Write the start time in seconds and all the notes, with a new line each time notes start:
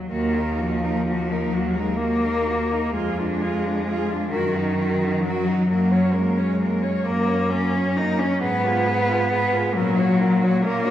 Already playing: F#3
0.11 D#2 D#3 A#3 F#4
0.34 D#4 A#4
0.58 F3 A#3 F#4
0.84 D#4 A#4
1.06 A#3 F#4
1.31 D#4 A#4
1.52 D#2 F#3 A#3 F#4
1.76 G#3 D#4 A#4
1.97 A#3 F#4
2.23 D#4 A#4
2.46 A#3 F#4
2.71 D#4 A#4
2.92 F2 G#3 F4 G#4
3.18 D4 F4
3.41 F4 G#4
3.64 D4 F4
3.85 F4 G#4
4.09 D4 F4
4.30 F#2 D#3 F#4 A#4
4.54 D#4 F#4
4.79 F#4 A#4
4.99 F#4
5.04 D#4
5.21 F#3 A#4
5.27 F#4
5.46 D#4 F#4
5.68 F#2 F#3 A#3 A#4
5.91 C#4 C#5
6.12 G#3 A#3 A#4
6.37 C#4 C#5
6.61 A#3 A#4
6.82 C#4 C#5
7.05 F#2 A#3 A#4
7.28 C#4 C#5
7.50 A#3 C#4 A#4
7.73 C#4 C#5
7.97 A#3 D#4 A#4
8.19 C#4 C#5
8.41 G#2 B3 G#4 B4
8.65 F4 G#4
8.86 G#4 B4
9.08 F4 G#4
9.31 G#4 B4
9.53 F4 G#4
9.74 A#2 F#3 C#4 A#4
9.98 F#4 C#5
10.20 C#4 A#4
10.42 F#4 C#5
10.62 A#3 C#4 A#4
10.85 F#4 C#5